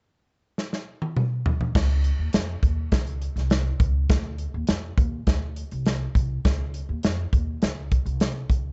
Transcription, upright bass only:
1.75 2.10 C#2 loud
2.19 2.30 D#2 medium
2.34 2.57 F2 medium
2.63 2.86 D#2 medium
2.92 3.27 C#2 medium
3.36 3.71 C2 medium
3.80 4.03 C#2 medium
4.10 4.45 D2 medium
4.54 4.66 D#2 medium
4.69 4.92 F2 loud
4.98 5.21 D#2 medium
5.27 5.62 D2 medium
5.72 6.06 C2 medium
6.15 6.38 C2 medium
6.45 6.79 C#2 medium
6.89 7.00 D#2 medium
7.04 7.27 F2 medium
7.33 7.56 D#2 medium
7.62 7.97 C#2 medium
8.06 8.40 C2 medium
8.50 8.72 C#2 medium

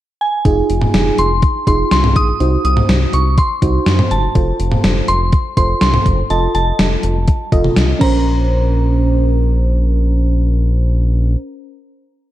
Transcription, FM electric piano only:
0.45 1.31 D#4 medium
0.45 1.31 F4 medium
0.45 1.31 G#4 medium
1.67 2.31 D#4 medium
1.67 2.31 F4 medium
1.67 2.31 G#4 medium
2.40 3.26 D#4 medium
2.40 3.26 F#4 medium
2.40 3.26 C5 medium
3.62 4.26 D#4 medium
3.62 4.26 F#4 medium
3.62 4.26 C5 medium
4.35 5.21 F4 medium
4.35 5.21 A4 medium
4.35 5.21 C5 medium
5.57 6.21 F4 medium
5.57 6.21 A4 medium
5.57 6.21 C5 medium
6.30 7.16 F4 medium
6.30 7.16 A4 medium
6.30 7.16 D#5 medium
7.52 8.01 F4 medium
7.52 8.01 A4 medium
7.52 8.01 D#5 medium
7.99 11.34 C#4 medium
7.99 11.36 A#4 medium
7.99 11.38 C5 medium

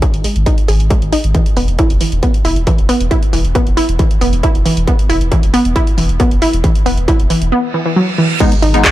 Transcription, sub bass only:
0.14 0.24 G#1 medium
0.36 0.46 G#1 medium
0.68 0.79 G#1 loud
0.80 0.90 G#1 medium
1.02 1.12 G#1 medium
1.24 1.34 G#1 medium
1.57 1.67 E1 medium
1.68 1.78 E1 medium
1.90 2.01 E1 medium
2.12 2.23 E1 medium
2.45 2.56 E1 loud
2.56 2.67 E1 medium
2.78 2.89 E1 medium
3.00 3.11 E1 medium
3.33 3.44 E1 loud
3.45 3.55 E1 medium
3.67 3.77 E1 medium
3.89 3.99 E1 medium
4.21 4.32 E1 loud
4.33 4.43 E1 medium
4.55 4.65 E1 medium
4.77 4.87 E1 medium
5.10 5.20 E1 loud
5.21 5.31 E1 medium
5.43 5.54 E1 medium
5.65 5.76 E1 medium
5.98 6.09 E1 loud
6.09 6.20 E1 medium
6.31 6.42 E1 medium
6.53 6.64 E1 medium
6.86 6.97 E1 loud
6.97 7.08 E1 medium
7.20 7.30 E1 medium
7.42 7.52 E1 medium
8.63 8.73 G#1 loud
8.74 8.84 G#1 medium

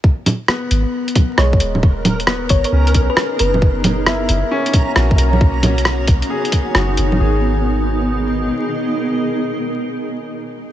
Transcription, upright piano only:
0.49 2.15 B3 medium
1.38 3.05 G#3 soft
2.27 3.80 B3 medium
2.73 3.80 C#4 medium
4.07 5.59 E4 medium
4.51 5.59 C#4 medium
4.96 5.59 F#4 soft
5.16 5.77 A#4 medium
5.28 5.87 C#5 medium
6.30 7.19 G#4 medium
6.75 7.38 F#4 medium
7.20 10.28 G#4 medium

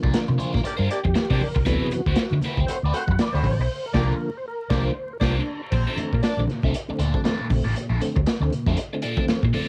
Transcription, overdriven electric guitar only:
0.03 0.17 A#3 soft
0.03 0.17 D4 soft
0.03 0.17 F4 soft
0.03 0.17 D5 medium
0.28 muted overdriven electric guitar stroke medium
0.38 0.59 A#3 loud
0.38 0.53 D4 loud
0.38 0.53 F4 loud
0.38 0.52 C5 loud
0.53 muted overdriven electric guitar stroke soft
0.63 muted overdriven electric guitar stroke soft
0.77 0.88 A#3 medium
0.77 0.88 D4 medium
0.77 0.88 F4 medium
0.77 0.88 C5 medium
0.89 muted overdriven electric guitar stroke soft
1.04 muted overdriven electric guitar stroke soft
1.14 muted overdriven electric guitar stroke soft
1.30 1.39 A#3 medium
1.30 1.39 D4 medium
1.30 1.40 F4 medium
1.30 1.40 C5 medium
1.40 muted overdriven electric guitar stroke soft
1.55 muted overdriven electric guitar stroke soft
1.65 1.86 C4 medium
1.65 1.87 E4 medium
1.65 1.87 F#4 medium
1.65 1.87 B4 loud
1.92 muted overdriven electric guitar stroke soft
2.08 2.21 C4 medium
2.08 2.21 E4 medium
2.08 2.21 F#4 medium
2.08 2.21 C5 medium
2.33 muted overdriven electric guitar stroke soft
2.44 2.64 C4 loud
2.44 2.60 E4 loud
2.44 2.59 F#4 loud
2.44 2.59 B4 loud
2.61 muted overdriven electric guitar stroke soft
2.70 muted overdriven electric guitar stroke soft
2.85 2.95 C4 medium
2.85 2.95 E4 medium
2.85 2.95 F#4 medium
2.85 2.96 B4 medium
2.96 muted overdriven electric guitar stroke soft
3.11 muted overdriven electric guitar stroke medium
3.21 muted overdriven electric guitar stroke medium
3.35 3.44 C4 medium
3.35 3.45 E4 medium
3.35 3.45 F#4 medium
3.35 3.46 B4 medium
3.45 muted overdriven electric guitar stroke soft
3.61 muted overdriven electric guitar stroke soft
3.95 4.14 A#3 loud
3.95 4.14 D4 loud
3.95 4.13 F4 loud
3.95 4.13 D5 loud
4.71 4.90 A#3 loud
4.71 4.90 D4 loud
4.71 4.90 F4 loud
4.71 4.89 C5 loud
5.21 5.40 A#3 loud
5.21 5.40 D4 loud
5.21 5.40 F4 loud
5.21 5.39 C5 loud
5.73 muted overdriven electric guitar stroke soft
5.87 5.97 D4 medium
5.87 5.97 F4 medium
5.87 5.97 A4 medium
5.87 5.99 E5 medium
5.98 muted overdriven electric guitar stroke medium
6.14 muted overdriven electric guitar stroke soft
6.24 muted overdriven electric guitar stroke soft
6.39 muted overdriven electric guitar stroke soft
6.64 6.74 D4 medium
6.64 6.74 F4 medium
6.64 6.74 A4 medium
6.64 6.75 E5 medium
6.75 muted overdriven electric guitar stroke soft
6.90 muted overdriven electric guitar stroke medium
6.99 7.20 D4 medium
6.99 7.15 F4 medium
6.99 7.14 A4 medium
6.99 7.13 D5 medium
7.15 muted overdriven electric guitar stroke soft
7.24 7.45 D4 medium
7.24 7.45 F4 medium
7.24 7.46 A4 medium
7.24 7.46 D5 medium
7.49 muted overdriven electric guitar stroke soft
7.64 7.73 D4 medium
7.64 7.73 F4 medium
7.64 7.74 A4 medium
7.64 7.74 D5 medium
7.74 muted overdriven electric guitar stroke soft
7.89 7.99 D4 medium
7.89 7.99 F4 medium
7.89 8.00 A4 medium
7.89 8.00 E5 medium
8.00 muted overdriven electric guitar stroke soft
8.16 muted overdriven electric guitar stroke soft
8.26 muted overdriven electric guitar stroke soft
8.42 muted overdriven electric guitar stroke soft
8.68 8.77 D4 medium
8.68 8.77 F4 medium
8.68 8.77 A4 medium
8.68 8.78 E5 medium
8.78 muted overdriven electric guitar stroke soft
8.93 muted overdriven electric guitar stroke soft
9.02 9.23 D4 medium
9.02 9.18 F4 medium
9.02 9.18 A4 medium
9.02 9.17 D5 medium
9.18 muted overdriven electric guitar stroke soft
9.30 muted overdriven electric guitar stroke soft
9.44 muted overdriven electric guitar stroke soft
9.53 9.68 D4 medium
9.53 9.68 F4 medium
9.53 9.68 A4 medium
9.53 9.68 D5 medium

